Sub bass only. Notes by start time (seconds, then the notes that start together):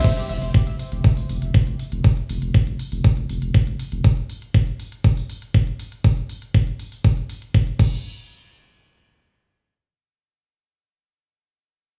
0.29 F1
0.42 F1
0.67 F1
0.92 F1
1.17 F1
1.29 F1
1.42 F1
1.67 F1
1.92 F1
2.29 F1
2.42 F1
2.67 F1
2.92 F1
3.17 F1
3.29 F1
3.42 F1
3.67 F1
3.92 F1